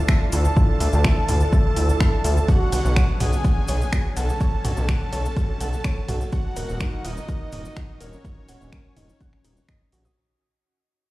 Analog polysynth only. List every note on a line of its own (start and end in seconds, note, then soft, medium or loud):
0.00 0.23 A5 loud
0.33 2.49 A5 loud
2.48 3.11 F#5 loud
3.20 4.07 G#5 loud
4.16 6.23 A5 loud
6.33 7.05 F#5 loud
7.05 8.01 D#5 loud
8.01 10.07 C#5 loud